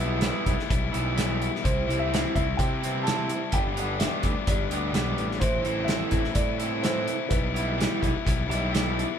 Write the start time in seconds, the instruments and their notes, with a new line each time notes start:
Already playing: picked electric bass B1, overdriven electric guitar G3 E4, upright piano B4
0.00 overdriven electric guitar E3 G3 B3
0.21 overdriven electric guitar E3 G3 B3 E4, snare, closed hi-hat
0.46 picked electric bass B1, overdriven electric guitar B3 E4, kick, closed hi-hat
0.59 snare
0.68 picked electric bass B1, overdriven electric guitar G3 B3 E4, kick, closed hi-hat
0.92 picked electric bass B1, overdriven electric guitar E3 G3 B3 E4, closed hi-hat
1.16 overdriven electric guitar E3 G3 B3 E4, snare, closed hi-hat
1.42 closed hi-hat
1.55 snare
1.63 picked electric bass C2, overdriven electric guitar G3 C4 E4, upright piano C5, kick, closed hi-hat
1.87 picked electric bass C2, overdriven electric guitar E3 G3 C4 E4, closed hi-hat
1.99 upright piano E5
2.12 overdriven electric guitar E3 G3 C4 E4, snare, closed hi-hat
2.35 picked electric bass C2, overdriven electric guitar C4 E4, upright piano E5, kick, closed hi-hat
2.57 picked electric bass C3, overdriven electric guitar G3 C4 E4, upright piano G5, kick, closed hi-hat
2.82 overdriven electric guitar E3 G3 C4 E4, closed hi-hat
3.03 overdriven electric guitar E3 G3 C4 E4, upright piano A5, closed hi-hat
3.08 snare
3.29 closed hi-hat
3.51 picked electric bass G1, overdriven electric guitar G3 B3 D4, upright piano G5, kick, closed hi-hat
3.76 overdriven electric guitar G3 B3 D4 G4, upright piano F#5, closed hi-hat
3.99 overdriven electric guitar G3 B3 D4 G4, upright piano E5, snare, closed hi-hat
4.23 picked electric bass D2, overdriven electric guitar B3 D4, kick, closed hi-hat
4.47 picked electric bass G1, overdriven electric guitar G3 B3 D4, upright piano D5, kick, closed hi-hat
4.70 picked electric bass D2, overdriven electric guitar G3 B3 D4 G4, closed hi-hat
4.93 picked electric bass B1, overdriven electric guitar G3 B3 D4 G4, snare, closed hi-hat
5.17 picked electric bass A1, closed hi-hat
5.32 snare
5.40 picked electric bass A1, overdriven electric guitar E3 C4 E4, upright piano C5, kick, closed hi-hat
5.62 picked electric bass A1, overdriven electric guitar C4 E4, closed hi-hat
5.66 overdriven electric guitar E3 E4 A4
5.84 overdriven electric guitar E3, upright piano E5, closed hi-hat
5.89 overdriven electric guitar C4 E4 A4, snare
6.11 picked electric bass A1, overdriven electric guitar C4 E4, kick, closed hi-hat
6.24 snare
6.35 picked electric bass A2, overdriven electric guitar E3 C4 E4, upright piano D5, kick, closed hi-hat
6.59 overdriven electric guitar E3 C4 E4 A4, closed hi-hat
6.81 overdriven electric guitar E3 C4 E4 A4, upright piano C5, snare, closed hi-hat
7.08 closed hi-hat
7.29 picked electric bass B1, overdriven electric guitar G3 B3 E4, upright piano B4, kick, closed hi-hat
7.54 overdriven electric guitar E3 G3 B3 E4 G4, closed hi-hat
7.77 overdriven electric guitar E3 G3 B3 E4 G4, closed hi-hat
7.82 snare
8.02 picked electric bass B1, overdriven electric guitar B3 E4, kick, closed hi-hat
8.25 picked electric bass B1, overdriven electric guitar G3 B3 E4, kick, closed hi-hat
8.48 picked electric bass B1, overdriven electric guitar E3 G3 B3 E4 G4, closed hi-hat
8.71 overdriven electric guitar E3 G3 B3 E4 G4, closed hi-hat
8.76 snare
8.99 closed hi-hat